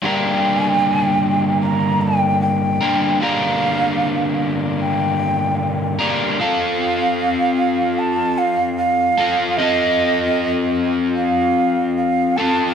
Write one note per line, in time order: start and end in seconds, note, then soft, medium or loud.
0.02 2.78 G2 medium
0.02 2.79 D3 medium
0.02 2.79 G3 medium
0.02 2.80 A#3 medium
0.02 2.80 D4 medium
0.02 2.80 A#4 medium
0.02 0.58 G5 loud
0.58 0.73 G#5 loud
0.73 0.89 G5 loud
0.89 1.04 G#5 loud
1.04 1.58 G5 loud
1.61 2.02 A#5 medium
2.01 2.40 G5 loud
2.41 3.22 G5 medium
2.81 3.19 G2 medium
2.81 3.20 D3 medium
2.81 3.19 G3 medium
2.81 3.19 A#3 medium
2.81 3.19 D4 medium
2.81 3.18 A#4 medium
3.20 5.97 G2 medium
3.20 5.97 D3 medium
3.20 5.97 G3 medium
3.20 5.98 A#3 medium
3.20 5.98 D4 medium
3.20 5.98 A#4 medium
3.20 4.53 F5 medium
4.80 5.96 G5 medium
5.99 6.38 G2 medium
5.99 6.38 D3 medium
5.99 6.38 G3 medium
5.99 6.38 A#3 medium
5.99 6.37 D4 medium
5.99 6.37 A#4 medium
6.39 9.16 F3 medium
6.39 9.16 C4 medium
6.39 9.17 F4 medium
6.39 9.16 A4 medium
6.39 8.00 F5 loud
7.98 8.39 A5 medium
8.38 8.76 F5 loud
8.77 9.58 F5 loud
9.18 9.57 F3 medium
9.18 9.57 C4 medium
9.18 9.56 F4 medium
9.18 9.56 A4 medium
9.57 12.36 F3 medium
9.57 12.36 C4 medium
9.57 12.37 F4 medium
9.57 10.90 D#5 loud
9.62 12.37 A4 medium
11.16 11.93 F5 medium
11.97 12.38 F5 medium
12.36 12.74 C4 medium
12.36 12.74 F4 medium
12.36 12.74 A4 medium
12.36 12.74 A5 medium
12.41 12.74 F3 medium